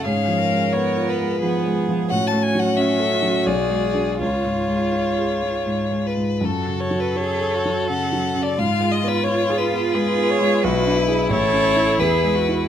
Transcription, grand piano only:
0.06 2.07 G#2 medium
0.28 0.65 F3 soft
0.51 0.88 G#3 soft
0.75 1.11 B3 soft
0.97 1.34 F4 medium
1.19 1.56 G#3 soft
1.43 1.79 F3 soft
1.66 2.02 G#3 soft
1.89 2.11 F3 soft
2.11 3.43 A2 medium
2.33 2.69 A3 soft
2.55 2.91 F#3 soft
2.78 3.14 C#4 soft
2.99 3.37 A4 soft
3.22 3.47 F#3 soft
3.47 4.18 B1 medium
3.70 4.10 G#3 soft
3.94 4.17 D4 soft
3.94 4.17 G#4 soft
4.20 6.39 C#2 medium
4.44 4.85 G#2 soft
4.68 5.09 G#3 soft
4.92 5.33 F4 soft
5.18 5.58 G#4 soft
5.43 5.83 G#3 soft
5.67 6.08 G#2 soft
5.91 6.32 G#3 soft
6.17 6.43 G#2 soft
6.41 8.55 F#2 medium
6.67 7.07 C#3 soft
6.91 7.31 F#3 soft
7.16 7.56 F#4 soft
7.41 7.80 A4 soft
7.65 8.04 F#3 soft
7.90 8.28 C#3 soft
8.12 8.50 F#3 soft
8.35 8.59 C#3 soft
8.58 10.59 G#2 medium
8.81 9.17 G#3 soft
9.04 9.40 B3 medium
9.26 9.63 F4 medium
9.50 9.87 G#4 medium
9.73 10.10 B3 medium
9.95 10.32 G#3 medium
10.18 10.55 B3 medium
10.41 10.64 G#3 medium
10.64 11.29 B1 medium
10.86 11.22 D4 medium
11.08 11.28 E4 soft
11.08 11.29 G#4 medium
11.29 11.98 A1 medium
11.53 11.90 C#4 medium
11.76 11.98 E4 soft
11.76 11.98 A4 medium
11.99 12.68 E2 medium
12.24 12.63 G#3 soft
12.49 12.68 E4 soft
12.49 12.68 B4 soft

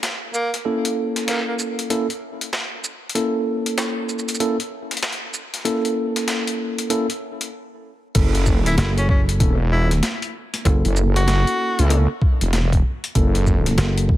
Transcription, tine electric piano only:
0.65 1.87 A#3 medium
0.65 1.87 C#4 medium
0.65 1.87 E4 medium
0.65 1.87 A4 medium
1.90 2.06 A#3 medium
1.90 2.06 C#4 medium
1.90 2.06 E4 medium
1.90 2.06 A4 medium
3.15 4.37 A#3 medium
3.15 4.37 C#4 medium
3.15 4.37 E4 medium
3.15 4.37 A4 medium
4.40 4.56 A#3 medium
4.40 4.56 C#4 medium
4.40 4.56 E4 medium
4.40 4.56 A4 medium
5.65 6.87 A#3 medium
5.65 6.87 C#4 medium
5.65 6.87 E4 medium
5.65 6.87 A4 medium
6.90 7.06 A#3 medium
6.90 7.06 C#4 medium
6.90 7.06 E4 medium
6.90 7.06 A4 medium
8.15 9.37 A#3 medium
8.15 9.37 C#4 medium
8.15 9.37 E4 medium
8.15 9.37 A4 medium
9.40 9.56 A#3 medium
9.40 9.56 C#4 medium
9.40 9.56 E4 medium
9.40 9.56 A4 medium
10.65 11.87 A#3 medium
10.65 11.87 C#4 medium
10.65 11.87 E4 medium
10.65 11.87 A4 medium
11.90 12.06 A#3 medium
11.90 12.06 C#4 medium
11.90 12.06 E4 medium
11.90 12.06 A4 medium
13.15 14.17 A#3 medium
13.15 14.17 C#4 medium
13.15 14.17 E4 medium
13.15 14.17 A4 medium

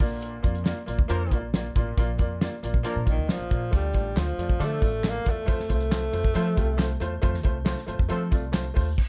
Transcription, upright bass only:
0.00 0.37 A#1 medium
0.44 0.72 F2 medium
0.88 0.97 A#1 medium
0.99 1.08 D2 medium
1.10 1.28 F2 medium
1.31 1.69 A#1 medium
1.76 1.94 A1 loud
1.97 2.16 A#1 medium
2.19 2.47 F2 medium
2.63 2.73 A#1 medium
2.74 2.83 A#2 medium
2.96 3.05 A#2 medium
3.07 3.16 A#1 medium
3.17 3.27 D2 medium
3.29 muted upright bass stroke soft
3.39 3.49 A#1 medium
3.51 3.69 A#2 medium
3.73 3.91 D2 loud
3.94 4.13 A1 medium
4.16 4.35 D2 medium
4.38 4.57 F2 medium
4.60 4.79 D3 loud
4.82 5.19 A1 medium
5.26 5.45 E2 medium
5.48 5.66 F2 loud
5.69 6.07 C2 medium
6.13 6.32 F2 medium
6.35 6.54 F3 loud
6.57 6.94 C2 medium
7.00 7.19 E2 medium
7.23 7.45 F2 loud
7.45 7.72 C2 medium
7.88 7.97 F2 medium
7.99 8.08 F2 medium
8.09 8.28 F3 loud
8.32 8.69 C2 medium
8.77 8.95 D#2 medium

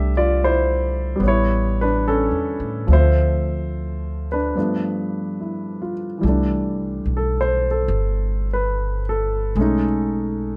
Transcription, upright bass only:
0.00 1.17 C2 medium
1.20 2.28 A1 medium
2.31 2.57 E2 soft
2.60 2.86 A2 medium
2.88 4.51 D2 medium
6.23 7.03 C2 medium
7.06 7.86 B1 medium
7.88 9.52 G1 medium
9.56 10.57 B1 medium

